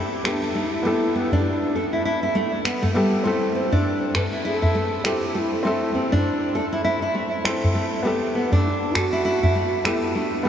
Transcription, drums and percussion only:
0.25 finger snap medium
1.32 udu medium
2.65 finger snap medium
2.83 udu medium
3.72 udu medium
4.15 finger snap medium
4.15 udu medium
4.63 udu medium
5.05 finger snap medium
6.13 udu medium
7.45 finger snap medium
7.64 udu medium
8.52 udu medium
8.95 finger snap medium
8.95 udu medium
9.43 udu medium
9.85 finger snap medium

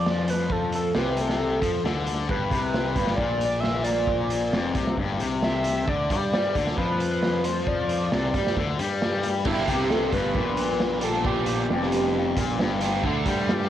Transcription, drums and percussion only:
0.06 snare loud
0.28 closed hi-hat medium
0.50 kick loud
0.72 closed hi-hat medium
0.95 snare loud
1.17 closed hi-hat medium
1.29 snare medium
1.62 kick medium
1.62 closed hi-hat medium
1.86 snare loud
2.07 closed hi-hat medium
2.29 kick loud
2.51 kick medium
2.51 closed hi-hat medium
2.74 snare loud
2.96 kick loud
2.96 closed hi-hat medium
3.07 snare medium
3.18 kick medium
3.41 closed hi-hat medium
3.64 snare medium
3.84 closed hi-hat medium
4.07 kick loud
4.30 closed hi-hat medium
4.53 snare loud
4.75 kick loud
4.75 closed hi-hat medium
4.87 snare medium
4.97 kick medium
5.20 closed hi-hat medium
5.42 snare loud
5.64 closed hi-hat medium
5.88 kick loud
6.10 kick loud
6.10 closed hi-hat medium
6.33 snare loud
6.55 kick loud
6.55 closed hi-hat medium
6.67 snare medium
6.78 kick medium
7.00 closed hi-hat medium
7.23 snare medium
7.44 closed hi-hat medium
7.67 kick loud
7.89 closed hi-hat medium
8.12 snare loud
8.34 kick loud
8.34 closed hi-hat medium
8.47 snare medium
8.57 kick medium
8.79 closed hi-hat medium
9.02 snare loud
9.23 closed hi-hat medium
9.45 kick loud
9.45 crash loud
9.68 kick medium
9.68 closed hi-hat medium
9.90 snare loud
10.12 kick loud
10.12 closed hi-hat medium
10.35 kick loud
10.57 closed hi-hat medium
10.69 snare soft
10.80 snare loud
11.01 closed hi-hat loud
11.25 kick loud
11.46 closed hi-hat medium
11.70 snare loud
11.92 closed hi-hat medium
12.37 kick loud
12.37 closed hi-hat loud
12.48 snare soft
12.59 snare loud
12.81 closed hi-hat loud
13.04 kick loud
13.26 kick loud
13.26 closed hi-hat medium
13.49 snare loud

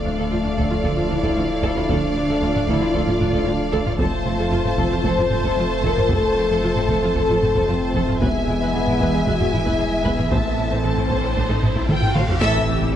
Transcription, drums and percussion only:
0.58 taiko medium
0.84 taiko medium
1.23 taiko medium
1.63 taiko medium
1.89 taiko medium
2.55 taiko low-mid soft
2.68 taiko medium
2.94 taiko medium
3.07 taiko low-mid soft
3.20 taiko low-mid medium
3.33 taiko medium
3.73 taiko medium
3.86 taiko low-mid soft
3.99 taiko loud
4.65 taiko low-mid soft
4.78 taiko medium
5.04 taiko medium
5.18 taiko low-mid soft
5.30 taiko low-mid medium
5.44 taiko medium
5.83 taiko medium
5.97 taiko low-mid soft
6.09 taiko loud
6.76 taiko low-mid soft
6.89 taiko medium
7.16 taiko medium
7.29 taiko low-mid soft
7.42 taiko low-mid medium
7.55 taiko medium
7.95 taiko medium
8.09 taiko low-mid soft
8.22 taiko loud
8.87 taiko low-mid medium
9.00 taiko medium
9.27 taiko medium
9.40 taiko low-mid soft
9.54 taiko low-mid medium
9.66 taiko medium
10.06 taiko medium
10.18 taiko low-mid soft
10.32 taiko loud
10.97 taiko low-mid soft
11.10 taiko medium
11.37 taiko medium
11.50 taiko low-mid soft
11.63 taiko low-mid medium
11.76 taiko medium
11.89 taiko mid medium
12.02 taiko low-mid medium
12.16 taiko mid medium
12.29 taiko low medium
12.41 taiko loud

